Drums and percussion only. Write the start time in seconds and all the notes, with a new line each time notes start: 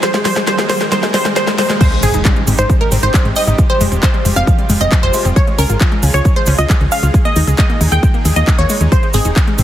0.03 snare, closed hi-hat
0.14 snare, closed hi-hat
0.25 snare, open hi-hat
0.36 snare, closed hi-hat
0.47 snare, closed hi-hat
0.58 snare, closed hi-hat
0.70 snare, open hi-hat
0.81 snare, closed hi-hat
0.92 snare, closed hi-hat
1.03 snare, closed hi-hat
1.14 snare, open hi-hat
1.25 snare, closed hi-hat
1.36 snare, closed hi-hat
1.47 snare, closed hi-hat
1.58 snare, open hi-hat
1.70 snare, closed hi-hat
1.81 kick, closed hi-hat, crash, cabasa
1.92 closed hi-hat
2.03 open hi-hat, cabasa
2.14 closed hi-hat, cabasa
2.25 kick, clap, closed hi-hat, cabasa
2.36 closed hi-hat
2.47 open hi-hat, cabasa
2.58 closed hi-hat, cabasa
2.70 kick, closed hi-hat, cabasa
2.81 closed hi-hat
2.92 open hi-hat, cabasa
3.03 closed hi-hat, cabasa
3.14 kick, clap, closed hi-hat, cabasa
3.25 closed hi-hat
3.36 open hi-hat, cabasa
3.47 closed hi-hat, cabasa
3.58 kick, closed hi-hat, cabasa
3.70 closed hi-hat
3.81 open hi-hat, cabasa
3.92 closed hi-hat, cabasa
4.03 kick, clap, closed hi-hat, cabasa
4.14 closed hi-hat
4.25 open hi-hat, cabasa
4.36 closed hi-hat, cabasa
4.47 kick, closed hi-hat, cabasa
4.59 closed hi-hat
4.70 open hi-hat, cabasa
4.80 closed hi-hat, cabasa
4.92 kick, clap, closed hi-hat, cabasa
5.03 closed hi-hat
5.13 open hi-hat, cabasa
5.25 closed hi-hat, cabasa
5.36 kick, closed hi-hat, cabasa
5.47 closed hi-hat
5.58 open hi-hat, cabasa
5.69 closed hi-hat, cabasa
5.80 kick, clap, closed hi-hat, cabasa
5.92 closed hi-hat
6.03 open hi-hat, cabasa
6.15 cabasa
6.25 kick, closed hi-hat, cabasa
6.36 closed hi-hat
6.46 open hi-hat, cabasa
6.58 closed hi-hat, cabasa
6.70 kick, clap, closed hi-hat, cabasa
6.81 closed hi-hat
6.92 open hi-hat, cabasa
7.03 closed hi-hat, cabasa
7.14 kick, closed hi-hat, cabasa
7.25 closed hi-hat
7.36 open hi-hat, cabasa
7.47 closed hi-hat, cabasa
7.57 kick, clap, closed hi-hat, cabasa
7.70 closed hi-hat
7.81 open hi-hat, cabasa
7.92 closed hi-hat, cabasa
8.03 kick, closed hi-hat, cabasa
8.14 closed hi-hat
8.25 open hi-hat, cabasa
8.36 closed hi-hat, cabasa
8.47 kick, clap, closed hi-hat, cabasa
8.59 closed hi-hat
8.69 open hi-hat, cabasa
8.80 closed hi-hat, cabasa
8.92 kick, closed hi-hat, cabasa
9.03 closed hi-hat
9.14 open hi-hat, cabasa
9.25 closed hi-hat, cabasa
9.36 kick, clap, closed hi-hat, cabasa
9.47 closed hi-hat
9.58 open hi-hat, cabasa